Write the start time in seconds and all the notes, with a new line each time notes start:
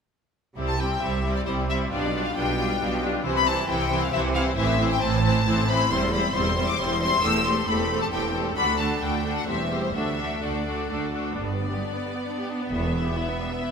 0.56 C2 C3 G3 C4 E4 G4
0.68 A5
0.79 G3 C4 E4 G4 G5
1.01 C2 C3 G3 C4 E4 G4 E5
1.24 G3 C4 E4 G4
1.35 D5
1.46 C2 C3 G3 C4 E4 G4 C5
1.69 G3 C4 E4 G4 E5
1.91 B1 B2 G3 D4 F4 G4 D5
2.14 G3 D4 F4 G4
2.26 F5
2.36 B1 B2 G3 D4 F4 G4 G5
2.58 G3 D4 F4 G4
2.80 B1 B2 G3 D4 F4 G4
3.02 G3 D4 F4 G4
3.24 C2 C3 E3 C4 E4 C5
3.37 B5
3.46 E3 C4 E4 C5 A5
3.69 C2 C3 E3 C4 E4 C5 G5
3.90 E3 C4 E4 C5
4.03 F5
4.12 C2 C3 E3 C4 E4 C5 E5
4.35 E3 C4 E4 C5 F5
4.57 A1 A2 E3 C4 E4 C5 E5
4.79 E3 C4 E4 C5
4.92 G5
5.01 A1 A2 E3 C4 E4 C5 A5
5.24 E3 C4 E4 C5
5.46 A1 A2 E3 C4 E4 C5
5.68 E3 C4 E4 C5 B5
5.90 E1 E2 G3 C4 E4 C5 C6
6.13 G3 C4 E4 C5 B5
6.34 E1 E2 G3 C4 E4 C5 C6
6.56 G3 C4 E4 C5
6.68 D6
6.78 E1 E2 G3 C4 E4 C5 C6
7.01 G3 C4 E4 C5 C6
7.23 E1 E2 A3 C4 G4 A4 E6
7.46 A3 C4 G4 A4 C6
7.68 E1 E2 A3 C4 G4 A4 B5
7.90 A3 C4 G4 A4
8.02 A5
8.12 E1 E2 A3 C4 G4 A4 G5
8.34 A3 C4 G4 A4
8.56 D2 A3 D4 F#4 A4 B5
8.79 A3 D4 F#4 A4 A5
9.02 D2 A3 D4 F#4 A4 G5
9.25 A3 D4 F#4 A4
9.37 F#5
9.48 E1 E2 G3 C4 G4 C5 E5
9.71 G3 C4 G4 C5
9.83 C5
9.94 D2 A3 D4 F#4 A4 E5
10.18 A3 D4 F#4 A4
10.42 D2 A3 D4 F#4 A4 D5
10.66 A3 D4 F#4 A4
10.90 D2 A3 D4 F#4 A4
11.13 A3 D4 F#4 A4
11.36 G1 G2 G3 B3 D5
11.47 B3
11.59 D4
11.71 G4
11.81 D4
11.93 B3
12.04 G3
12.15 B3
12.26 D4
12.38 G4
12.49 D4
12.61 B3
12.72 E1 E2 G3 E5
12.83 B3
12.93 E4
13.05 G4
13.16 E4
13.28 B3
13.39 G3
13.50 B3
13.62 E4